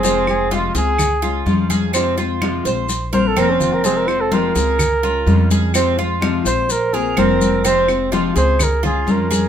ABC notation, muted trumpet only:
X:1
M:4/4
L:1/16
Q:1/4=126
K:Fm
V:1 name="Muted trumpet"
A2 A2 F2 A6 z4 | z8 z2 c =A B D F B | A B c =A B12 | z6 c2 B2 A2 B4 |
c2 z4 c2 B2 A2 B4 |]